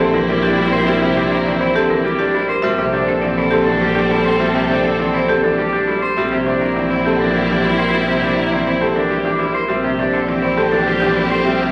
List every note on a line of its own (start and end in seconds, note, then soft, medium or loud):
0.00 2.48 A#1 medium
0.00 0.18 D3 loud
0.00 0.18 C4 medium
0.00 2.45 C4 medium
0.00 2.45 E4 medium
0.00 0.18 G4 loud
0.14 0.33 E3 medium
0.14 0.33 A#4 medium
0.29 0.48 G3 medium
0.29 0.48 G4 medium
0.43 0.62 D4 medium
0.43 0.62 G4 medium
0.58 0.77 G3 medium
0.58 0.72 E4 medium
0.72 0.91 A#4 medium
0.72 0.92 C5 loud
0.87 1.07 G3 loud
0.87 1.07 C4 medium
0.87 1.06 E5 loud
1.02 1.21 C3 medium
1.02 1.21 G4 medium
1.17 1.36 C4 medium
1.17 1.36 D4 medium
1.17 1.36 G4 medium
1.32 1.51 A#4 medium
1.46 1.65 E3 medium
1.46 1.65 C4 medium
1.46 1.65 D5 medium
1.61 1.80 C4 medium
1.61 1.80 E4 loud
1.75 1.95 D3 loud
1.75 1.95 C4 medium
1.75 1.95 G4 loud
1.90 2.09 E3 medium
1.90 2.09 A#4 medium
2.04 2.24 G3 medium
2.04 2.24 G4 loud
2.19 2.39 D4 medium
2.19 2.38 G4 medium
2.34 2.54 G3 medium
2.34 2.49 E4 medium
2.48 2.68 A#4 medium
2.48 2.68 C5 medium
2.62 6.01 A#1 medium
2.62 2.83 G3 loud
2.62 2.83 C4 medium
2.62 5.98 C4 medium
2.62 5.98 A4 medium
2.62 2.82 E5 loud
2.78 2.98 C3 medium
2.78 2.98 G4 medium
2.93 3.12 C4 medium
2.93 3.12 D4 medium
2.93 3.12 G4 medium
3.08 3.27 A4 medium
3.22 3.42 E3 medium
3.22 3.42 C4 medium
3.22 3.41 D5 medium
3.37 3.57 C4 medium
3.37 3.56 E4 loud
3.51 3.71 D3 medium
3.51 3.66 C4 medium
3.51 3.71 G4 loud
3.64 3.86 E3 medium
3.64 3.86 D4 medium
3.64 3.85 A4 medium
3.81 4.01 G3 medium
3.81 4.01 G4 loud
3.95 4.15 D4 medium
3.95 4.15 G4 medium
4.11 4.30 G3 medium
4.11 4.25 E4 medium
4.25 4.45 A4 medium
4.25 4.45 C5 medium
4.40 4.59 G3 loud
4.40 4.59 C4 medium
4.40 4.59 E5 loud
4.55 4.74 C3 medium
4.55 4.74 G4 medium
4.69 4.89 C4 medium
4.69 4.89 D4 medium
4.69 4.89 G4 medium
4.85 5.04 A4 medium
4.99 5.18 E3 medium
4.99 5.18 C4 medium
4.99 5.18 D5 medium
5.14 5.33 C4 medium
5.14 5.33 E4 loud
5.28 5.48 D3 medium
5.28 5.43 C4 medium
5.28 5.48 G4 loud
5.43 5.63 E3 medium
5.43 5.62 D4 medium
5.43 5.62 A4 medium
5.58 5.77 G3 medium
5.58 5.77 G4 medium
5.73 5.92 D4 medium
5.73 5.92 G4 medium
5.88 6.07 G3 medium
5.88 6.02 E4 medium
6.02 6.21 A4 medium
6.02 6.21 C5 medium
6.16 9.54 A#1 medium
6.16 6.36 G3 loud
6.16 9.51 C4 medium
6.16 6.36 C4 medium
6.16 9.51 E4 medium
6.16 6.36 E5 loud
6.32 6.51 C3 medium
6.32 6.51 G4 medium
6.46 6.66 C4 medium
6.46 6.65 D4 medium
6.46 6.65 G4 medium
6.61 6.80 A#4 medium
6.76 6.95 E3 medium
6.76 6.95 C4 medium
6.76 6.95 D5 medium
6.90 7.09 C4 medium
6.90 7.09 E4 loud
7.05 7.25 D3 medium
7.05 7.19 C4 medium
7.05 7.24 G4 medium
7.20 7.39 E3 medium
7.20 7.39 D4 medium
7.20 7.39 A#4 medium
7.35 7.54 G3 medium
7.35 7.54 G4 medium
7.50 7.69 E3 medium
7.50 7.68 D4 medium
7.50 7.68 G4 medium
7.64 7.83 G3 medium
7.64 7.79 E4 medium
7.78 7.98 A#4 medium
7.78 7.98 C5 medium
7.93 8.12 G3 medium
7.93 8.13 C4 medium
7.93 8.12 E5 medium
8.07 8.27 C3 medium
8.07 8.27 G4 medium
8.22 8.41 C4 medium
8.22 8.42 D4 medium
8.22 8.42 G4 medium
8.38 8.57 A#4 medium
8.52 8.71 E3 medium
8.52 8.71 C4 medium
8.52 8.71 D5 medium
8.67 8.86 C4 medium
8.67 8.86 E4 medium
8.81 9.00 D3 medium
8.81 8.95 C4 medium
8.81 9.01 G4 medium
8.95 9.15 E3 medium
8.95 9.15 D4 medium
8.95 9.15 A#4 medium
9.10 9.30 G3 medium
9.10 9.30 G4 medium
9.25 9.44 E3 medium
9.25 9.44 D4 medium
9.25 9.45 G4 medium
9.39 9.59 G3 medium
9.39 9.54 E4 medium
9.55 9.75 A#4 medium
9.55 9.74 C5 medium
9.68 11.72 A#1 medium
9.68 9.88 G3 medium
9.68 9.89 C4 medium
9.68 11.72 C4 medium
9.68 11.72 G4 medium
9.68 9.89 E5 medium
9.84 10.03 C3 medium
9.84 10.03 G4 medium
9.99 10.18 C4 medium
9.99 10.18 D4 medium
9.99 10.19 G4 medium
10.13 10.33 A4 medium
10.28 10.47 E3 medium
10.28 10.48 C4 medium
10.28 10.48 D5 medium
10.42 10.62 C4 medium
10.42 10.62 E4 medium
10.57 10.77 D3 loud
10.57 10.72 C4 medium
10.57 10.77 G4 loud
10.72 10.92 E3 medium
10.72 10.92 D4 medium
10.72 10.92 A4 medium
10.87 11.07 G3 medium
10.87 11.06 G4 loud
11.00 11.21 E3 medium
11.00 11.21 D4 medium
11.00 11.20 G4 loud
11.16 11.36 G3 medium
11.16 11.31 E4 medium
11.31 11.51 A4 medium
11.31 11.51 C5 medium
11.45 11.66 G3 loud
11.45 11.65 C4 medium
11.45 11.65 E5 loud
11.61 11.72 C3 medium
11.61 11.72 G4 medium